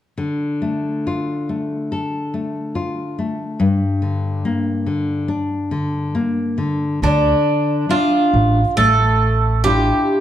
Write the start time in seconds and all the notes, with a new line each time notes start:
0.18 D3
0.62 A3
1.07 F4
1.49 A3
1.92 A4
2.34 A3
2.75 F4
3.19 A3
3.60 G2
4.02 D3
4.45 A#3
4.86 D3
5.28 D4
5.71 D3
6.15 A#3
6.58 D3
7.02 D2 D3 D4
7.89 D4 F4 E5
8.34 A1
8.77 A1 A3 A4
9.64 D4 E4 F4 G4